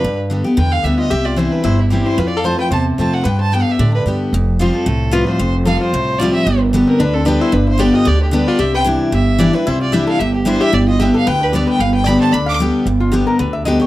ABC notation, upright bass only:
X:1
M:4/4
L:1/8
Q:"Swing" 1/4=225
K:Gmix
V:1 name="Upright bass" clef=bass
G,,4 E,,2 D,,2 | C,,4 G,,,4 | F,,4 E,,2 F,,2 | G,,4 A,,2 G,,2 |
F,,,4 C,,4 | F,,,4 C,,4 | G,,,4 D,,4 | G,,,4 D,,4 |
C,,4 G,,,4 | C,,4 G,,,4 | G,,,4 D,,4 | G,,,4 D,,4 |
G,,,4 D,,4 |]